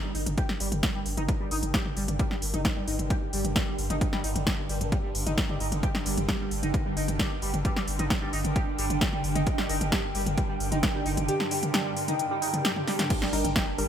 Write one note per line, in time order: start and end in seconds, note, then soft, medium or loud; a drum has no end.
0.00 13.09 G2 medium
0.00 13.09 D3 medium
0.00 0.10 G3 medium
0.00 13.88 D4 medium
0.00 13.88 A#4 medium
0.00 13.88 G5 medium
0.15 0.26 G1 loud
0.15 0.19 D#4 medium
0.15 open hi-hat medium
0.26 0.37 G1 medium
0.26 closed hi-hat medium
0.26 mid tom medium
0.38 0.42 G4 medium
0.38 kick loud
0.38 closed hi-hat medium
0.49 snare medium
0.60 0.71 G1 loud
0.60 0.66 G3 medium
0.60 open hi-hat loud
0.72 0.83 G1 medium
0.72 closed hi-hat medium
0.72 mid tom medium
0.83 0.86 G3 loud
0.83 kick loud
0.83 snare loud
0.83 closed hi-hat medium
0.95 0.99 G3 medium
1.06 1.17 G1 loud
1.06 open hi-hat loud
1.17 1.28 G1 medium
1.17 1.21 D#4 medium
1.17 closed hi-hat medium
1.17 mid tom medium
1.28 kick loud
1.28 closed hi-hat medium
1.40 1.46 G3 medium
1.51 1.62 G1 medium
1.51 1.55 D#4 medium
1.51 open hi-hat loud
1.63 1.74 G1 medium
1.63 closed hi-hat medium
1.63 mid tom medium
1.74 1.78 G4 medium
1.74 kick loud
1.74 snare loud
1.74 closed hi-hat medium
1.85 mid tom medium
1.97 2.08 G1 loud
1.97 2.03 G3 medium
1.97 open hi-hat medium
2.08 2.19 G1 medium
2.08 closed hi-hat medium
2.08 mid tom medium
2.19 2.22 G3 loud
2.19 kick loud
2.19 closed hi-hat medium
2.31 2.35 G3 medium
2.31 snare medium
2.42 2.53 G1 loud
2.42 open hi-hat loud
2.54 2.65 G1 medium
2.54 2.58 D#4 medium
2.54 closed hi-hat medium
2.54 mid tom medium
2.65 kick loud
2.65 snare loud
2.65 closed hi-hat medium
2.76 2.82 G3 medium
2.88 2.98 G1 loud
2.88 2.92 D#4 medium
2.88 open hi-hat loud
2.99 3.10 G1 medium
2.99 closed hi-hat medium
2.99 mid tom medium
3.10 3.14 G4 medium
3.10 kick loud
3.10 closed hi-hat medium
3.33 3.44 G1 loud
3.33 3.39 G3 medium
3.33 open hi-hat loud
3.45 3.56 G1 medium
3.45 closed hi-hat medium
3.45 mid tom medium
3.56 3.58 G3 loud
3.56 kick loud
3.56 snare loud
3.56 closed hi-hat medium
3.67 3.71 G3 medium
3.78 3.89 G1 loud
3.78 open hi-hat medium
3.90 4.01 G1 medium
3.90 3.94 D#4 medium
3.90 closed hi-hat medium
3.90 mid tom medium
4.01 kick loud
4.01 closed hi-hat medium
4.13 4.19 G3 medium
4.13 snare medium
4.24 4.35 G1 loud
4.24 4.28 D#4 medium
4.24 open hi-hat loud
4.35 4.46 G1 medium
4.35 closed hi-hat medium
4.35 mid tom medium
4.47 4.51 G4 medium
4.47 kick loud
4.47 snare loud
4.47 closed hi-hat medium
4.69 4.80 G1 loud
4.69 4.76 G3 medium
4.69 open hi-hat medium
4.81 4.92 G1 medium
4.81 closed hi-hat medium
4.81 mid tom medium
4.92 4.95 G3 loud
4.92 kick loud
4.92 closed hi-hat medium
5.04 5.08 G3 medium
5.15 5.26 G1 medium
5.15 open hi-hat loud
5.26 5.37 G1 medium
5.26 5.30 D#4 medium
5.26 closed hi-hat medium
5.26 mid tom medium
5.38 kick loud
5.38 snare loud
5.38 closed hi-hat medium
5.49 5.55 G3 medium
5.49 mid tom medium
5.60 5.71 G1 loud
5.60 5.64 D#4 medium
5.60 open hi-hat medium
5.72 5.83 G1 medium
5.72 closed hi-hat medium
5.72 mid tom loud
5.83 5.87 G4 medium
5.83 kick loud
5.83 closed hi-hat medium
5.95 snare medium
6.06 6.17 G1 loud
6.06 6.12 G3 medium
6.06 open hi-hat loud
6.17 6.28 G1 medium
6.17 closed hi-hat medium
6.17 mid tom medium
6.29 6.31 G3 loud
6.29 kick loud
6.29 snare loud
6.29 closed hi-hat medium
6.40 6.44 G3 medium
6.51 6.62 G1 loud
6.51 open hi-hat loud
6.63 6.74 G1 medium
6.63 6.67 D#4 medium
6.63 closed hi-hat medium
6.63 mid tom medium
6.74 kick loud
6.74 closed hi-hat medium
6.86 6.92 G3 medium
6.97 7.08 G1 loud
6.97 7.01 D#4 medium
6.97 open hi-hat loud
7.08 7.19 G1 medium
7.08 closed hi-hat medium
7.08 mid tom medium
7.19 7.24 G4 medium
7.19 kick loud
7.19 snare loud
7.19 closed hi-hat medium
7.42 7.53 G1 loud
7.42 7.48 G3 medium
7.42 open hi-hat medium
7.54 7.65 G1 medium
7.54 closed hi-hat medium
7.54 mid tom loud
7.65 7.67 G3 loud
7.65 kick loud
7.65 closed hi-hat medium
7.76 7.80 G3 medium
7.76 snare medium
7.88 7.99 G1 loud
7.88 open hi-hat loud
7.99 8.10 G1 medium
7.99 8.03 D#4 medium
7.99 closed hi-hat medium
7.99 mid tom loud
8.10 kick loud
8.10 snare loud
8.10 closed hi-hat medium
8.22 8.28 G3 medium
8.33 8.44 G1 loud
8.33 8.37 D#4 medium
8.33 open hi-hat medium
8.45 8.56 G1 medium
8.45 closed hi-hat medium
8.45 mid tom medium
8.56 8.60 G4 medium
8.56 kick loud
8.56 closed hi-hat medium
8.78 8.89 G1 loud
8.78 8.85 G3 medium
8.78 open hi-hat loud
8.90 9.01 G1 medium
8.90 closed hi-hat medium
8.90 mid tom medium
9.01 9.04 G3 loud
9.01 kick loud
9.01 snare loud
9.01 closed hi-hat medium
9.13 9.17 G3 medium
9.13 mid tom medium
9.24 9.35 G1 loud
9.24 open hi-hat medium
9.35 9.46 G1 medium
9.35 9.39 D#4 medium
9.35 closed hi-hat medium
9.35 mid tom loud
9.47 kick loud
9.47 closed hi-hat medium
9.58 9.64 G3 medium
9.58 snare medium
9.69 9.80 G1 loud
9.69 9.74 D#4 medium
9.69 open hi-hat loud
9.81 9.92 G1 medium
9.81 closed hi-hat medium
9.81 mid tom medium
9.92 9.96 G4 medium
9.92 kick loud
9.92 snare loud
9.92 closed hi-hat medium
10.15 10.26 G1 loud
10.15 10.21 G3 medium
10.15 open hi-hat medium
10.26 10.37 G1 medium
10.26 closed hi-hat medium
10.26 mid tom medium
10.38 10.40 G3 loud
10.38 kick loud
10.38 closed hi-hat medium
10.49 10.53 G3 medium
10.60 10.71 G1 loud
10.60 open hi-hat loud
10.72 10.83 G1 medium
10.72 10.76 D#4 medium
10.72 closed hi-hat medium
10.72 mid tom medium
10.83 kick loud
10.83 snare loud
10.83 closed hi-hat medium
10.94 11.01 G3 medium
11.06 11.17 G1 loud
11.06 11.10 D#4 medium
11.06 open hi-hat medium
11.17 11.28 G1 medium
11.17 closed hi-hat medium
11.17 mid tom medium
11.28 11.33 G4 medium
11.28 closed hi-hat medium
11.40 snare medium
11.51 11.57 G3 medium
11.51 open hi-hat loud
11.63 closed hi-hat medium
11.63 mid tom medium
11.74 11.76 G3 loud
11.74 snare loud
11.74 closed hi-hat medium
11.85 11.89 G3 medium
11.97 open hi-hat loud
12.08 12.12 D#4 medium
12.08 closed hi-hat medium
12.08 mid tom medium
12.19 closed hi-hat medium
12.19 swell medium
12.31 12.37 G3 medium
12.42 12.46 D#4 medium
12.42 open hi-hat loud
12.54 closed hi-hat medium
12.54 mid tom medium
12.65 12.69 G4 medium
12.65 snare loud
12.65 closed hi-hat medium
12.76 mid tom medium
12.87 12.94 G3 medium
12.87 snare medium
12.87 open hi-hat medium
12.99 snare medium
12.99 closed hi-hat medium
12.99 mid tom medium
13.10 13.88 G2 medium
13.10 13.88 D3 medium
13.10 kick loud
13.10 closed hi-hat medium
13.10 crash loud
13.10 sub drop medium
13.22 13.28 G3 medium
13.22 snare medium
13.33 13.44 G1 loud
13.33 13.48 G3 loud
13.33 13.48 D4 medium
13.33 13.37 D#4 medium
13.33 13.48 A#4 loud
13.33 open hi-hat loud
13.45 13.56 G1 medium
13.45 closed hi-hat medium
13.45 mid tom medium
13.56 13.60 G4 medium
13.56 kick loud
13.56 snare loud
13.56 closed hi-hat medium
13.78 13.88 G1 loud
13.78 13.85 G3 medium
13.78 13.88 G3 medium
13.78 13.88 D4 medium
13.78 13.88 A#4 medium
13.78 open hi-hat loud